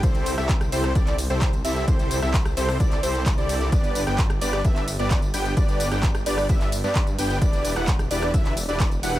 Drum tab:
RD |--x---x---x---x-|--x---x---x---x-|--x---x---x---x-|--x---x---x---x-|
HH |xxoxxxo-xxoxxxox|xxoxxxooxxoxxxox|xxoxxxoxxxoxxxox|xxoxxxooxxoxxxox|
TB |xxxxxxxxxxxxxxxx|xxxxxxxxxxxxxxxx|xxxxxxxxxxxxxxxx|xxxxxxxxxxxxxxxx|
CP |----x----x--x---|----x----x--x---|----x----x--x---|----x----x--x---|
SD |---r-r-r--------|---r-r-r--------|---r-r-r--------|---r-r-r--------|
BD |o---o---o---o---|o---o---o---o---|o---o---o---o---|o---o---o---o---|

RD |--x---x---x---x-|
HH |xxoxxxoxxxoxxxox|
TB |xxxxxxxxxxxxxxxx|
CP |----x----x--x---|
SD |---r-r-r--------|
BD |o---o---o---o---|